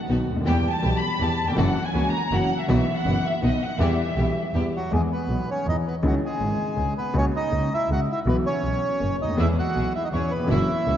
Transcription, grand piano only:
0.09 0.25 B1 medium
0.09 0.25 B2 medium
0.09 0.25 D#3 soft
0.09 0.24 F#3 soft
0.09 0.24 B3 soft
0.09 0.25 F#4 medium
0.32 0.37 C#2 medium
0.36 0.41 D2 medium
0.41 0.46 D#2 medium
0.45 0.62 E2 medium
0.45 0.62 E3 medium
0.45 0.62 G3 medium
0.45 0.62 B3 medium
0.45 0.62 G4 medium
0.82 0.99 B1 medium
0.82 0.99 B2 medium
0.82 0.99 E3 soft
0.82 0.99 G3 soft
0.82 0.99 B3 soft
0.82 0.99 G4 medium
1.19 1.36 E2 medium
1.19 1.36 E3 medium
1.19 1.36 G3 soft
1.19 1.36 B3 soft
1.19 1.36 G4 medium
1.44 1.48 D#2 medium
1.48 1.53 E2 medium
1.48 1.57 F2 medium
1.56 1.73 F#2 medium
1.56 1.73 E3 medium
1.56 1.72 F#3 medium
1.56 1.73 A#3 medium
1.56 1.73 C#4 medium
1.56 1.73 F#4 medium
1.93 2.10 C#2 medium
1.93 2.10 C#3 medium
1.93 2.10 E3 soft
1.93 2.10 A#3 soft
1.93 2.10 C#4 soft
1.93 2.10 F#4 medium
2.32 2.48 F#2 medium
2.32 2.48 E3 medium
2.32 2.48 F#3 medium
2.32 2.48 A#3 soft
2.32 2.48 C#4 soft
2.32 2.48 F#4 soft
2.68 2.84 B1 medium
2.68 2.84 B2 medium
2.68 2.84 E3 medium
2.68 2.84 F#3 medium
2.68 2.85 B3 medium
2.68 2.84 F#4 medium
3.05 3.21 F#1 medium
3.05 3.21 F#2 medium
3.05 3.21 E3 soft
3.05 3.21 F#3 soft
3.05 3.21 B3 soft
3.05 3.22 F#4 medium
3.42 3.58 B1 medium
3.42 3.58 B2 medium
3.42 3.58 D#3 soft
3.42 3.58 F#3 soft
3.42 3.58 B3 soft
3.42 3.58 F#4 soft
3.80 3.95 E2 medium
3.80 3.95 E3 medium
3.80 3.96 G3 medium
3.80 3.96 B3 medium
3.80 3.96 G4 medium
4.17 4.33 B1 medium
4.17 4.33 B2 medium
4.17 4.33 E3 soft
4.17 4.32 G3 soft
4.17 4.33 B3 soft
4.17 4.33 G4 medium
4.54 4.70 E2 medium
4.54 4.71 E3 medium
4.54 4.70 G3 soft
4.54 4.70 B3 soft
4.54 4.71 G4 medium
4.92 5.08 E2 medium
4.92 5.08 E3 medium
4.92 5.08 G#3 medium
4.92 5.08 B3 medium
4.92 5.08 G#4 medium
5.28 5.44 B1 medium
5.28 5.45 B2 soft
5.66 5.82 E2 soft
5.66 5.82 E3 medium
6.02 6.19 C#2 medium
6.02 6.19 C#3 medium
6.02 6.18 D#3 medium
6.02 6.19 G#3 medium
6.02 6.19 C#4 medium
6.02 6.19 E4 medium
6.40 6.56 G#1 medium
6.40 6.56 G#2 medium
6.76 6.92 C#2 medium
6.76 6.92 C#3 medium
7.13 7.30 C#2 medium
7.13 7.30 C#3 medium
7.13 7.30 G#3 medium
7.13 7.30 A#3 medium
7.13 7.30 F#4 medium
7.51 7.67 C#2 medium
7.51 7.67 C#3 medium
7.91 8.05 C#2 medium
7.91 8.05 C#3 soft
8.26 8.42 B1 medium
8.26 8.42 B2 medium
8.26 8.42 E3 medium
8.26 8.42 F#3 medium
8.26 8.42 B3 medium
8.26 8.42 F#4 medium
8.62 8.79 B1 soft
8.62 8.79 B2 soft
9.00 9.16 F#1 soft
9.00 9.16 F#2 soft
9.23 9.29 C#2 soft
9.28 9.33 D2 medium
9.32 9.38 D#2 medium
9.37 9.54 E2 medium
9.37 9.53 E3 medium
9.37 9.53 G#3 medium
9.37 9.53 B3 medium
9.37 9.54 G#4 medium
9.75 9.91 B1 medium
9.75 9.91 B2 soft
10.12 10.28 E2 medium
10.12 10.28 E3 medium
10.36 10.41 D#2 soft
10.36 10.45 E2 medium
10.44 10.49 F2 medium
10.44 10.65 F#2 medium
10.44 10.64 E3 medium
10.44 10.65 A#3 medium
10.44 10.65 C#4 medium
10.44 10.65 F#4 medium
10.48 10.65 F#3 medium
10.86 10.97 C#2 soft
10.86 10.97 C#3 soft

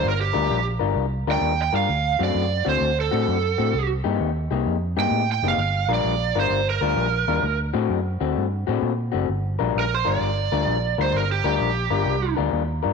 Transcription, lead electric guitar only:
0.08 0.21 A#4 medium
0.21 0.65 G4 medium
1.32 1.59 G5 medium
1.62 1.75 G5 medium
1.76 2.19 F5 medium
2.23 2.66 D5 medium
2.69 2.97 C5 medium
3.01 3.88 A4 medium
5.00 5.28 G5 loud
5.32 5.45 G5 medium
5.48 5.91 F5 medium
5.94 6.36 D5 medium
6.40 6.68 C5 medium
6.70 7.58 A#4 medium
9.79 9.95 A#4 medium
9.95 10.07 C5 medium
10.08 10.97 D5 medium
11.01 11.15 C5 medium
11.16 11.30 A#4 medium
11.32 11.45 G4 medium
11.47 12.36 G4 medium

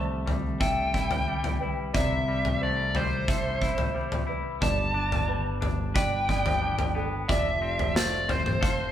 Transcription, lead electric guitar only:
0.00 0.60 A5 medium
0.60 1.98 G5 medium
1.94 2.62 E5 medium
2.63 2.96 D5 medium
2.96 4.25 C5 medium
4.62 5.95 A5 medium
5.96 7.33 G5 medium
7.28 7.96 E5 medium
7.96 8.30 D5 medium
8.29 8.92 C5 medium

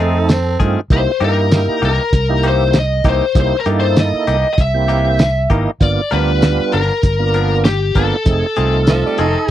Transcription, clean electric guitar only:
0.00 0.18 D#3 medium
0.00 0.18 A3 medium
0.00 0.18 C4 medium
0.00 0.18 G#4 medium
0.60 0.80 D#3 medium
0.60 0.80 A3 medium
0.60 0.79 C4 medium
0.60 0.79 G#4 medium
1.20 1.41 E3 medium
1.20 1.40 A#3 medium
1.20 1.40 D#4 medium
1.20 1.40 G4 medium
1.82 2.02 E3 medium
1.82 2.02 A#3 medium
1.82 2.02 D#4 medium
1.82 2.01 G4 medium
2.44 2.64 E3 medium
2.44 2.64 A#3 medium
2.44 2.63 D#4 medium
2.44 2.63 G4 medium
3.05 3.25 E3 medium
3.05 3.25 A#3 soft
3.05 3.24 D#4 medium
3.05 3.24 G4 medium
3.66 3.86 E3 soft
3.66 3.86 A#3 medium
3.66 3.86 D#4 medium
3.66 3.85 G4 medium
4.27 4.47 E3 soft
4.27 4.47 A#3 medium
4.27 4.47 D#4 medium
4.27 4.47 G4 medium
4.88 5.09 E3 medium
4.88 5.09 A#3 medium
4.88 5.08 D#4 soft
4.88 5.08 G4 medium
5.50 5.70 E3 medium
5.50 5.70 A#3 medium
5.50 5.70 D#4 medium
5.50 5.69 G4 medium
6.11 6.31 F3 medium
6.11 6.31 B3 medium
6.11 6.31 D4 medium
6.11 6.31 A#4 medium
6.73 6.93 F3 soft
6.73 6.93 B3 medium
6.73 6.93 D4 medium
6.73 6.92 A#4 medium
7.34 7.54 F3 soft
7.34 7.54 B3 medium
7.34 7.54 D4 medium
7.34 7.54 A#4 medium
7.96 8.16 F3 soft
7.96 8.16 B3 medium
7.96 8.15 D4 medium
7.96 8.15 A#4 medium
8.57 8.77 D#3 soft
8.57 8.77 A3 medium
8.57 8.77 C4 medium
8.57 8.76 G#4 medium
9.19 9.38 D#3 medium
9.19 9.38 A3 medium
9.19 9.38 C4 medium
9.19 9.38 G#4 medium

